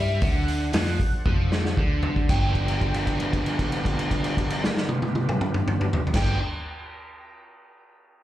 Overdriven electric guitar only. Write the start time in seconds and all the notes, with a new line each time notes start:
Already playing: G3
0.22 D3
0.73 F3
1.27 F3
1.78 D3
2.30 G2 D3 F3 B3 D4
6.14 G2 D3 F3 B3
6.18 D4